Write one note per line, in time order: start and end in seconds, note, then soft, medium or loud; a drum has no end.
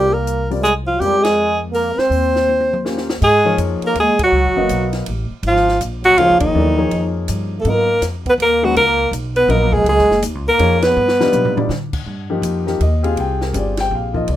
0.00 0.96 C2 medium
0.00 0.11 G3 medium
0.00 0.12 G3 medium
0.00 0.11 C4 medium
0.00 0.11 F4 soft
0.00 0.15 G4 medium
0.00 0.11 A#4 medium
0.00 0.11 D5 medium
0.11 0.49 A#3 medium
0.11 0.50 A#4 medium
0.27 closed hi-hat soft
0.51 0.62 G3 medium
0.51 0.63 C4 medium
0.51 0.63 F4 medium
0.51 0.63 A#4 medium
0.51 0.63 D5 medium
0.51 open hi-hat soft
0.61 0.72 G#3 medium
0.61 0.74 G#4 medium
0.65 closed hi-hat soft
0.85 0.99 F3 medium
0.85 1.02 F4 medium
0.97 1.94 F2 medium
0.97 1.22 G3 medium
0.97 2.03 G#3 soft
0.97 2.03 C4 soft
0.97 2.03 F4 soft
0.97 1.25 G4 medium
0.97 2.04 A#4 soft
0.97 2.03 D5 medium
0.97 open hi-hat soft
1.20 1.59 G#3 medium
1.20 1.60 G#4 medium
1.25 snare medium
1.25 ride medium
1.70 1.97 A#3 medium
1.70 2.00 A#4 medium
1.70 open hi-hat soft
1.95 2.84 C4 medium
1.95 2.86 C5 medium
1.95 muted upright bass stroke soft
1.95 snare soft
2.10 3.17 D#2 medium
2.10 open hi-hat soft
2.36 snare soft
2.49 high tom soft
2.60 high tom soft
2.73 mid tom medium
2.85 3.06 A#3 medium
2.85 3.06 C#4 medium
2.85 3.06 F4 medium
2.85 3.06 G4 soft
2.85 3.06 C5 medium
2.85 snare medium
2.98 snare medium
3.09 snare medium
3.20 3.57 G#2 medium
3.20 3.55 G#3 medium
3.20 3.57 G#4 medium
3.20 kick medium
3.20 crash medium
3.45 3.93 F3 medium
3.45 3.93 A#3 medium
3.45 3.93 D#4 medium
3.45 3.93 G#4 medium
3.45 3.93 C#5 medium
3.58 3.80 F2 medium
3.58 hi-hat pedal medium
3.58 ride medium
3.82 3.96 A#3 medium
3.82 muted upright bass stroke soft
3.82 ride soft
3.87 3.97 A#4 medium
3.95 4.17 D#2 medium
3.95 ride medium
3.99 4.20 G#3 medium
3.99 4.20 G#4 medium
4.19 4.91 F#3 medium
4.19 muted upright bass stroke soft
4.19 kick medium
4.19 ride medium
4.24 4.91 F#4 medium
4.32 4.46 C#2 medium
4.44 4.57 G#1 soft
4.56 4.69 F#1 medium
4.56 5.04 F#3 medium
4.56 5.04 B3 medium
4.56 5.04 A#4 medium
4.56 5.04 D#5 medium
4.56 5.04 F5 medium
4.69 5.06 B1 medium
4.69 hi-hat pedal medium
4.69 ride medium
4.93 snare soft
4.93 ride soft
5.06 5.29 A1 medium
5.06 ride medium
5.30 muted upright bass stroke soft
5.43 5.79 G#1 medium
5.43 5.79 F3 medium
5.43 ride medium
5.47 5.80 F4 medium
5.56 snare soft
5.68 snare soft
5.81 6.15 A#1 medium
5.81 hi-hat pedal medium
5.81 ride medium
6.04 6.20 F#3 medium
6.04 6.20 F#4 loud
6.04 ride soft
6.16 6.30 C#2 medium
6.16 6.41 F3 medium
6.16 6.74 F3 medium
6.16 6.74 A#3 medium
6.16 6.74 D#4 medium
6.16 6.40 F4 loud
6.16 6.74 G#4 medium
6.16 6.74 C#5 medium
6.16 ride medium
6.29 6.40 G#1 medium
6.40 6.52 F#1 medium
6.40 7.11 D#3 medium
6.40 7.10 D#4 medium
6.40 kick medium
6.40 ride medium
6.54 6.90 D#2 medium
6.54 6.75 F#3 medium
6.54 6.75 B3 medium
6.54 6.75 E4 medium
6.54 6.75 A4 medium
6.54 6.76 D5 medium
6.77 7.57 F3 medium
6.77 7.57 A#3 medium
6.77 7.57 D#4 medium
6.77 7.57 G#4 medium
6.77 7.57 C#5 medium
6.91 7.27 F2 medium
6.91 ride medium
7.28 7.64 G2 medium
7.28 hi-hat pedal medium
7.28 ride medium
7.58 7.67 A3 medium
7.58 7.71 A4 medium
7.65 8.01 G#2 medium
7.65 7.86 F#3 soft
7.65 8.02 A#3 medium
7.65 7.86 B3 soft
7.65 7.87 F4 soft
7.65 7.87 A#4 soft
7.65 7.87 D#5 medium
7.65 ride medium
7.69 8.04 A#4 loud
8.02 8.37 F2 medium
8.02 snare soft
8.02 hi-hat pedal medium
8.02 ride medium
8.26 8.32 B3 medium
8.26 8.34 B4 medium
8.26 kick soft
8.26 ride soft
8.38 8.74 D#2 medium
8.38 8.68 A#3 medium
8.38 ride medium
8.42 8.66 A#4 loud
8.63 8.74 D#3 medium
8.63 8.77 F#3 medium
8.63 8.74 G#3 medium
8.63 8.75 C#4 medium
8.63 8.75 F#4 medium
8.63 8.76 F#4 medium
8.63 8.75 B4 medium
8.75 9.11 C#2 medium
8.75 9.11 A#3 medium
8.75 9.10 A#4 loud
8.75 ride medium
9.11 9.48 B1 medium
9.11 hi-hat pedal medium
9.11 ride medium
9.36 9.54 B3 medium
9.36 9.52 B4 medium
9.36 ride soft
9.48 9.84 A#1 medium
9.48 10.04 F#3 medium
9.48 10.04 B3 medium
9.48 10.04 F4 medium
9.48 10.05 A#4 medium
9.48 9.75 A#4 medium
9.48 10.05 D#5 medium
9.48 ride medium
9.52 9.77 A#3 medium
9.73 9.88 G#3 medium
9.73 9.86 G#4 medium
9.73 kick medium
9.84 10.00 C#2 medium
9.84 ride medium
9.88 10.22 G#3 medium
9.88 10.22 G#4 medium
9.98 10.09 G#1 medium
9.98 snare soft
10.10 10.22 F#1 medium
10.10 snare soft
10.22 10.35 D#2 medium
10.22 hi-hat pedal medium
10.22 ride medium
10.35 10.47 C#2 medium
10.48 10.59 G#1 medium
10.48 10.84 A#3 medium
10.48 10.85 A#4 loud
10.59 10.95 F2 medium
10.59 10.96 F3 medium
10.59 10.96 A#3 medium
10.59 10.96 D#4 medium
10.59 10.96 G#4 medium
10.59 10.97 C#5 medium
10.59 ride medium
10.82 11.70 B3 medium
10.82 11.70 B4 medium
10.82 snare medium
10.82 ride medium
10.97 11.32 G2 medium
11.08 snare medium
11.20 11.55 G3 medium
11.20 11.55 D4 medium
11.20 11.55 D#4 medium
11.20 11.55 F4 medium
11.20 11.55 B4 medium
11.20 snare medium
11.33 11.55 B2 medium
11.33 hi-hat pedal soft
11.33 mid tom medium
11.45 floor tom medium
11.55 11.69 G3 medium
11.55 11.69 D4 medium
11.55 11.69 D#4 medium
11.55 11.69 F4 medium
11.55 11.69 D5 medium
11.55 muted upright bass stroke soft
11.55 floor tom medium
11.69 12.05 D3 medium
11.69 snare medium
11.93 kick medium
11.93 crash medium
12.06 12.42 G2 medium
12.30 12.65 F3 medium
12.30 12.65 A#3 medium
12.30 12.65 D#4 medium
12.30 12.65 G4 medium
12.42 12.79 F2 medium
12.42 hi-hat pedal medium
12.42 ride medium
12.66 12.79 F3 medium
12.66 12.79 A#3 medium
12.66 12.79 D#4 medium
12.66 12.79 G4 medium
12.66 snare soft
12.80 13.16 D#2 medium
12.80 13.04 D#5 medium
12.80 ride medium
13.03 13.52 C4 medium
13.03 13.52 F4 medium
13.03 13.51 G4 medium
13.03 13.51 G#4 medium
13.03 13.17 F5 medium
13.03 ride soft
13.16 13.53 C2 medium
13.16 13.41 G5 medium
13.16 ride medium
13.41 13.55 A#4 medium
13.41 snare soft
13.54 13.90 G1 medium
13.54 14.10 C4 soft
13.54 14.10 F4 soft
13.54 14.10 G4 medium
13.54 14.10 G#4 medium
13.54 13.78 D5 medium
13.54 hi-hat pedal medium
13.54 ride medium
13.77 13.92 G5 loud
13.77 snare medium
13.77 ride medium
13.91 14.27 A#1 medium
13.91 14.16 F5 medium
14.13 14.26 F3 medium
14.13 14.26 A#3 medium
14.13 14.27 D#4 medium
14.13 14.27 F4 medium
14.13 14.28 D#5 medium
14.13 kick soft
14.28 14.36 C2 medium
14.28 14.36 D5 medium
14.28 ride medium